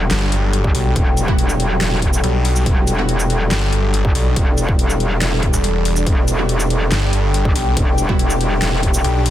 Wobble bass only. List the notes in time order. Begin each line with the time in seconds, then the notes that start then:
0.64 G1
0.96 E1
1.81 E1
2.66 E1
4.05 G1
4.36 E1
5.22 E1
6.07 E1
7.45 G1
7.77 E1
8.62 E1